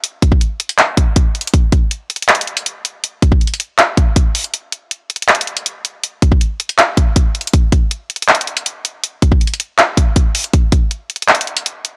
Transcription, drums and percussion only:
0.04 closed hi-hat medium
0.22 kick medium
0.22 closed hi-hat medium
0.32 kick medium
0.41 closed hi-hat medium
0.60 closed hi-hat medium
0.69 closed hi-hat medium
0.79 clap loud
0.79 closed hi-hat medium
0.97 kick medium
0.97 closed hi-hat medium
1.16 kick loud
1.16 closed hi-hat medium
1.35 closed hi-hat soft
1.41 closed hi-hat medium
1.47 closed hi-hat medium
1.54 kick loud
1.54 closed hi-hat medium
1.72 kick medium
1.72 closed hi-hat medium
1.91 closed hi-hat medium
2.10 closed hi-hat medium
2.16 closed hi-hat medium
2.22 closed hi-hat medium
2.29 clap loud
2.29 closed hi-hat medium
2.35 closed hi-hat medium
2.41 closed hi-hat medium
2.47 closed hi-hat soft
2.57 closed hi-hat medium
2.66 closed hi-hat medium
2.85 closed hi-hat medium
3.04 closed hi-hat medium
3.22 kick medium
3.22 closed hi-hat medium
3.32 kick loud
3.41 closed hi-hat soft
3.47 closed hi-hat medium
3.54 closed hi-hat medium
3.60 closed hi-hat medium
3.79 clap loud
3.79 closed hi-hat medium
3.97 kick medium
3.97 closed hi-hat medium
4.16 kick medium
4.16 closed hi-hat medium
4.35 closed hi-hat medium
4.35 open hi-hat medium
4.44 closed hi-hat medium
4.54 closed hi-hat medium
4.72 closed hi-hat medium
4.91 closed hi-hat medium
5.10 closed hi-hat soft
5.16 closed hi-hat medium
5.22 closed hi-hat medium
5.29 clap loud
5.29 closed hi-hat medium
5.35 closed hi-hat medium
5.41 closed hi-hat medium
5.47 closed hi-hat soft
5.57 closed hi-hat medium
5.66 closed hi-hat medium
5.85 closed hi-hat medium
6.04 closed hi-hat medium
6.22 kick medium
6.22 closed hi-hat medium
6.32 kick medium
6.41 closed hi-hat medium
6.60 closed hi-hat medium
6.69 closed hi-hat medium
6.79 clap loud
6.79 closed hi-hat medium
6.97 kick loud
6.97 closed hi-hat medium
7.16 kick medium
7.16 closed hi-hat medium
7.35 closed hi-hat soft
7.41 closed hi-hat medium
7.47 closed hi-hat medium
7.54 kick loud
7.54 closed hi-hat medium
7.72 kick medium
7.72 closed hi-hat medium
7.91 closed hi-hat medium
8.10 closed hi-hat soft
8.16 closed hi-hat medium
8.22 closed hi-hat medium
8.28 clap loud
8.28 closed hi-hat medium
8.35 closed hi-hat medium
8.41 closed hi-hat medium
8.47 closed hi-hat soft
8.57 closed hi-hat medium
8.66 closed hi-hat medium
8.85 closed hi-hat medium
9.04 closed hi-hat medium
9.22 kick medium
9.22 closed hi-hat medium
9.32 kick medium
9.41 closed hi-hat soft
9.47 closed hi-hat medium
9.54 closed hi-hat medium
9.60 closed hi-hat medium
9.79 clap loud
9.79 closed hi-hat medium
9.97 kick medium
9.97 closed hi-hat medium
10.16 kick medium
10.16 closed hi-hat medium
10.35 closed hi-hat medium
10.35 open hi-hat medium
10.44 closed hi-hat medium
10.54 kick loud
10.54 closed hi-hat medium
10.72 kick medium
10.72 closed hi-hat medium
10.91 closed hi-hat medium
11.10 closed hi-hat soft
11.16 closed hi-hat medium
11.22 closed hi-hat medium
11.28 clap loud
11.28 closed hi-hat medium
11.35 closed hi-hat medium
11.41 closed hi-hat medium
11.47 closed hi-hat soft
11.57 closed hi-hat medium
11.66 closed hi-hat medium
11.85 closed hi-hat medium

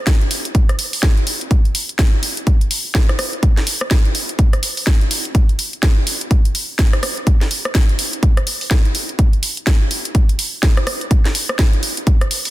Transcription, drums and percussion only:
0.07 kick loud
0.07 snare loud
0.07 closed hi-hat medium
0.21 closed hi-hat soft
0.31 open hi-hat loud
0.45 closed hi-hat medium
0.55 kick loud
0.55 closed hi-hat medium
0.69 cross-stick medium
0.69 closed hi-hat medium
0.79 open hi-hat loud
0.93 open hi-hat medium
1.03 kick loud
1.03 snare loud
1.17 closed hi-hat soft
1.27 open hi-hat loud
1.41 closed hi-hat soft
1.51 kick loud
1.51 closed hi-hat medium
1.65 closed hi-hat soft
1.75 open hi-hat loud
1.89 closed hi-hat soft
1.99 kick loud
1.99 snare loud
1.99 closed hi-hat medium
2.23 open hi-hat loud
2.37 closed hi-hat medium
2.47 kick loud
2.47 closed hi-hat medium
2.61 closed hi-hat medium
2.71 open hi-hat loud
2.95 kick loud
2.95 snare loud
3.09 cross-stick medium
3.09 closed hi-hat soft
3.19 cross-stick medium
3.19 open hi-hat loud
3.33 closed hi-hat soft
3.43 kick loud
3.43 closed hi-hat medium
3.57 snare soft
3.57 closed hi-hat soft
3.67 open hi-hat loud
3.81 cross-stick medium
3.91 kick loud
3.91 snare loud
3.91 closed hi-hat medium
4.05 closed hi-hat soft
4.15 open hi-hat loud
4.29 closed hi-hat soft
4.39 kick loud
4.39 closed hi-hat medium
4.53 cross-stick medium
4.53 closed hi-hat medium
4.63 open hi-hat loud
4.77 open hi-hat medium
4.87 kick loud
4.87 snare loud
5.01 closed hi-hat soft
5.11 open hi-hat loud
5.25 closed hi-hat soft
5.35 kick loud
5.35 closed hi-hat medium
5.49 closed hi-hat soft
5.59 open hi-hat loud
5.73 closed hi-hat soft
5.83 kick loud
5.83 snare loud
5.83 closed hi-hat medium
6.07 open hi-hat loud
6.21 closed hi-hat medium
6.31 kick loud
6.31 closed hi-hat medium
6.45 closed hi-hat medium
6.55 open hi-hat loud
6.79 kick loud
6.79 snare loud
6.79 closed hi-hat medium
6.93 cross-stick medium
6.93 closed hi-hat soft
7.03 cross-stick medium
7.03 open hi-hat loud
7.17 closed hi-hat soft
7.27 kick loud
7.27 closed hi-hat medium
7.41 snare soft
7.41 closed hi-hat soft
7.51 open hi-hat loud
7.65 cross-stick medium
7.65 closed hi-hat soft
7.75 kick loud
7.75 snare loud
7.75 closed hi-hat medium
7.89 closed hi-hat soft
7.99 open hi-hat loud
8.13 closed hi-hat medium
8.23 kick loud
8.23 closed hi-hat medium
8.37 cross-stick medium
8.37 closed hi-hat medium
8.47 open hi-hat loud
8.61 open hi-hat medium
8.71 kick loud
8.71 snare loud
8.85 closed hi-hat soft
8.95 open hi-hat loud
9.09 closed hi-hat soft
9.19 kick loud
9.19 closed hi-hat medium
9.33 closed hi-hat soft
9.43 open hi-hat loud
9.57 closed hi-hat soft
9.67 kick loud
9.67 snare loud
9.67 closed hi-hat medium
9.91 open hi-hat loud
10.05 closed hi-hat medium
10.15 kick loud
10.15 closed hi-hat medium
10.29 closed hi-hat medium
10.39 open hi-hat loud
10.63 kick loud
10.63 snare loud
10.63 closed hi-hat medium
10.77 cross-stick medium
10.77 closed hi-hat soft
10.87 cross-stick medium
10.87 open hi-hat loud
11.01 closed hi-hat soft
11.11 kick loud
11.11 closed hi-hat medium
11.25 snare soft
11.25 closed hi-hat soft
11.35 open hi-hat loud
11.49 cross-stick medium
11.49 closed hi-hat soft
11.59 kick loud
11.59 snare loud
11.59 closed hi-hat medium
11.73 closed hi-hat soft
11.83 open hi-hat loud
11.97 closed hi-hat medium
12.07 kick loud
12.07 closed hi-hat medium
12.21 cross-stick medium
12.21 closed hi-hat medium
12.31 open hi-hat loud
12.45 open hi-hat medium

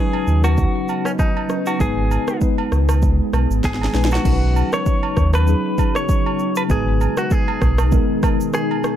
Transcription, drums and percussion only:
0.13 high agogo medium
0.27 shaker soft
0.44 cross-stick loud
0.44 high agogo medium
0.44 shaker medium
0.57 kick loud
0.57 shaker medium
0.88 high agogo medium
0.88 shaker medium
1.05 cross-stick medium
1.05 shaker medium
1.19 kick loud
1.19 low woodblock medium
1.19 shaker medium
1.37 high agogo medium
1.49 cross-stick medium
1.49 shaker soft
1.66 high agogo medium
1.66 shaker medium
1.80 kick loud
1.80 shaker medium
2.11 high agogo medium
2.11 shaker medium
2.28 cross-stick loud
2.28 shaker medium
2.41 kick loud
2.41 shaker medium
2.58 high agogo medium
2.72 cross-stick medium
2.72 shaker soft
2.89 cross-stick loud
2.89 high agogo medium
2.89 shaker medium
3.02 kick loud
3.02 shaker medium
3.33 cross-stick medium
3.33 high agogo medium
3.33 shaker medium
3.51 shaker medium
3.64 kick loud
3.64 snare medium
3.64 low woodblock medium
3.64 shaker medium
3.74 snare medium
3.82 snare medium
3.82 high agogo medium
3.94 snare medium
3.94 shaker soft
4.05 snare medium
4.11 high agogo medium
4.11 shaker medium
4.15 snare medium
4.25 kick loud
4.25 crash loud
4.25 shaker medium
4.56 high agogo medium
4.56 shaker medium
4.73 cross-stick loud
4.73 shaker medium
4.86 kick loud
4.86 shaker medium
5.03 high agogo medium
5.17 kick medium
5.17 cross-stick medium
5.17 shaker medium
5.33 cross-stick loud
5.33 high agogo medium
5.33 shaker medium
5.47 shaker medium
5.78 kick medium
5.78 high agogo medium
5.78 shaker medium
5.95 cross-stick medium
5.95 shaker medium
6.09 kick loud
6.09 shaker medium
6.26 high agogo medium
6.39 shaker soft
6.56 high agogo medium
6.56 shaker medium
6.70 kick loud
6.70 shaker medium
7.01 high agogo medium
7.01 shaker medium
7.17 cross-stick loud
7.17 shaker medium
7.31 kick loud
7.31 shaker medium
7.48 high agogo medium
7.62 kick medium
7.62 cross-stick medium
7.62 shaker medium
7.78 cross-stick loud
7.78 high agogo medium
7.78 shaker medium
7.92 kick loud
7.92 shaker medium
8.23 kick medium
8.23 cross-stick medium
8.23 high agogo medium
8.23 shaker medium
8.41 shaker medium
8.54 cross-stick loud
8.54 shaker medium
8.71 high agogo medium
8.84 cross-stick loud
8.84 shaker soft

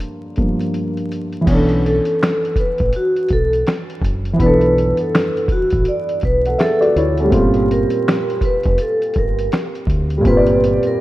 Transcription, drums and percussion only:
0.00 closed hi-hat medium
0.36 kick medium
0.36 closed hi-hat soft
0.60 closed hi-hat soft
0.74 closed hi-hat medium
0.97 closed hi-hat soft
1.12 closed hi-hat medium
1.33 closed hi-hat soft
1.47 kick loud
1.47 closed hi-hat medium
1.47 crash medium
1.69 closed hi-hat soft
1.86 closed hi-hat medium
2.05 closed hi-hat medium
2.23 finger snap loud
2.23 snare loud
2.23 closed hi-hat medium
2.45 closed hi-hat soft
2.56 kick medium
2.56 closed hi-hat medium
2.78 kick loud
2.78 closed hi-hat soft
2.93 closed hi-hat medium
3.16 closed hi-hat soft
3.29 kick medium
3.29 closed hi-hat medium
3.53 closed hi-hat soft
3.67 finger snap medium
3.67 snare loud
3.67 closed hi-hat medium
3.90 closed hi-hat soft
4.01 kick medium
4.01 closed hi-hat medium
4.25 closed hi-hat soft
4.40 kick loud
4.40 closed hi-hat medium
4.61 closed hi-hat soft
4.78 closed hi-hat medium
4.97 closed hi-hat soft
5.15 finger snap loud
5.15 snare loud
5.15 closed hi-hat medium
5.37 closed hi-hat soft
5.48 kick medium
5.48 closed hi-hat medium
5.70 kick loud
5.70 closed hi-hat medium
5.85 closed hi-hat medium
6.09 closed hi-hat soft
6.21 kick loud
6.21 closed hi-hat medium
6.46 closed hi-hat soft
6.59 finger snap medium
6.59 snare loud
6.59 closed hi-hat medium
6.82 closed hi-hat soft
6.97 closed hi-hat medium
7.18 closed hi-hat soft
7.32 kick loud
7.32 closed hi-hat medium
7.54 closed hi-hat soft
7.71 closed hi-hat medium
7.90 closed hi-hat medium
8.08 finger snap loud
8.08 snare loud
8.08 closed hi-hat medium
8.30 closed hi-hat soft
8.41 kick medium
8.41 closed hi-hat medium
8.63 kick loud
8.63 closed hi-hat soft
8.78 closed hi-hat medium
9.02 closed hi-hat soft
9.14 kick loud
9.14 closed hi-hat medium
9.39 closed hi-hat soft
9.52 finger snap medium
9.52 snare loud
9.52 closed hi-hat medium
9.75 closed hi-hat soft
9.87 kick medium
9.87 closed hi-hat medium
10.10 closed hi-hat soft
10.25 kick loud
10.25 closed hi-hat medium
10.47 closed hi-hat soft
10.64 closed hi-hat medium
10.83 closed hi-hat medium

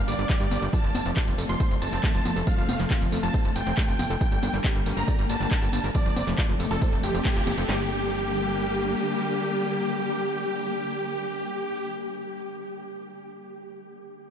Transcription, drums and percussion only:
0.08 open hi-hat loud
0.08 tambourine medium
0.19 closed hi-hat soft
0.19 tambourine soft
0.30 kick loud
0.30 clap loud
0.30 closed hi-hat medium
0.30 tambourine soft
0.41 closed hi-hat soft
0.41 tambourine soft
0.51 open hi-hat loud
0.51 tambourine medium
0.51 high conga medium
0.62 closed hi-hat soft
0.62 tambourine soft
0.73 kick loud
0.73 closed hi-hat medium
0.73 tambourine soft
0.84 closed hi-hat soft
0.84 tambourine soft
0.95 open hi-hat loud
0.95 tambourine medium
0.95 high conga medium
1.06 closed hi-hat soft
1.06 tambourine soft
1.17 kick loud
1.17 clap loud
1.17 closed hi-hat medium
1.17 tambourine soft
1.27 closed hi-hat soft
1.27 tambourine soft
1.38 open hi-hat loud
1.38 tambourine medium
1.49 closed hi-hat soft
1.49 tambourine soft
1.60 kick loud
1.60 closed hi-hat medium
1.60 tambourine soft
1.71 closed hi-hat soft
1.71 tambourine soft
1.82 open hi-hat loud
1.82 tambourine medium
1.93 closed hi-hat soft
1.93 tambourine soft
2.04 kick loud
2.04 clap loud
2.04 closed hi-hat medium
2.04 tambourine soft
2.15 closed hi-hat soft
2.15 tambourine soft
2.25 open hi-hat loud
2.25 tambourine medium
2.25 high conga medium
2.36 closed hi-hat soft
2.36 tambourine soft
2.47 kick loud
2.47 closed hi-hat medium
2.47 tambourine soft
2.58 closed hi-hat soft
2.58 tambourine soft
2.69 open hi-hat loud
2.69 tambourine medium
2.69 high conga medium
2.80 clap soft
2.80 closed hi-hat soft
2.80 tambourine soft
2.91 kick loud
2.91 clap loud
2.91 closed hi-hat medium
2.91 tambourine soft
3.01 closed hi-hat soft
3.01 tambourine soft
3.12 open hi-hat loud
3.12 tambourine medium
3.23 tambourine soft
3.34 kick loud
3.34 closed hi-hat medium
3.34 tambourine soft
3.45 closed hi-hat soft
3.45 tambourine soft
3.56 open hi-hat loud
3.56 tambourine medium
3.67 closed hi-hat soft
3.67 tambourine soft
3.77 kick loud
3.77 clap loud
3.77 closed hi-hat medium
3.77 tambourine soft
3.88 closed hi-hat soft
3.88 tambourine soft
3.99 open hi-hat loud
3.99 tambourine medium
3.99 high conga medium
4.10 closed hi-hat soft
4.10 tambourine soft
4.21 kick loud
4.21 closed hi-hat medium
4.21 tambourine soft
4.32 closed hi-hat soft
4.32 tambourine soft
4.43 open hi-hat loud
4.43 tambourine medium
4.43 high conga medium
4.54 closed hi-hat soft
4.54 tambourine soft
4.64 kick loud
4.64 clap loud
4.64 closed hi-hat medium
4.64 tambourine soft
4.75 closed hi-hat soft
4.75 tambourine soft
4.86 open hi-hat loud
4.86 tambourine medium
4.97 tambourine soft
5.08 kick loud
5.08 closed hi-hat medium
5.08 tambourine soft
5.19 closed hi-hat soft
5.19 tambourine soft
5.30 open hi-hat loud
5.30 tambourine medium
5.40 closed hi-hat soft
5.40 tambourine soft
5.51 kick loud
5.51 clap loud
5.51 closed hi-hat medium
5.51 tambourine soft
5.62 closed hi-hat soft
5.62 tambourine soft
5.73 open hi-hat loud
5.73 tambourine medium
5.73 high conga medium
5.84 closed hi-hat soft
5.84 tambourine soft
5.95 kick loud
5.95 closed hi-hat medium
5.95 tambourine soft
6.06 closed hi-hat soft
6.06 tambourine soft
6.17 open hi-hat loud
6.17 tambourine medium
6.17 high conga medium
6.27 clap soft
6.27 closed hi-hat soft
6.27 tambourine soft
6.38 kick loud
6.38 clap loud
6.38 closed hi-hat medium
6.38 tambourine soft
6.49 closed hi-hat soft
6.49 tambourine soft
6.60 open hi-hat loud
6.60 tambourine medium
6.71 closed hi-hat soft
6.71 tambourine soft
6.82 kick loud
6.82 closed hi-hat medium
6.82 tambourine soft
6.93 closed hi-hat soft
6.93 tambourine soft
7.03 open hi-hat loud
7.03 tambourine medium
7.14 closed hi-hat soft
7.14 tambourine soft
7.25 kick loud
7.25 clap loud
7.25 closed hi-hat medium
7.25 tambourine soft
7.36 clap soft
7.36 closed hi-hat soft
7.36 tambourine soft
7.47 open hi-hat loud
7.47 tambourine medium
7.47 high conga medium
7.58 closed hi-hat soft
7.58 tambourine soft
7.69 snare loud
7.69 clap medium

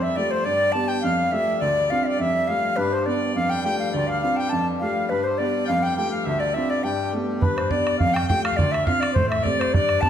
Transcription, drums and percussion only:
7.42 bodhran medium
7.58 bodhran soft
7.71 bodhran medium
7.87 bodhran soft
8.00 bodhran medium
8.09 bodhran soft
8.16 bodhran medium
8.23 bodhran soft
8.30 bodhran medium
8.45 bodhran medium
8.52 bodhran soft
8.59 bodhran medium
8.74 bodhran soft
8.87 bodhran medium
9.03 bodhran medium
9.16 bodhran medium
9.24 bodhran soft
9.32 bodhran medium
9.39 bodhran soft
9.46 bodhran medium
9.61 bodhran medium
9.68 bodhran soft
9.74 bodhran medium
9.89 bodhran medium
10.03 bodhran medium

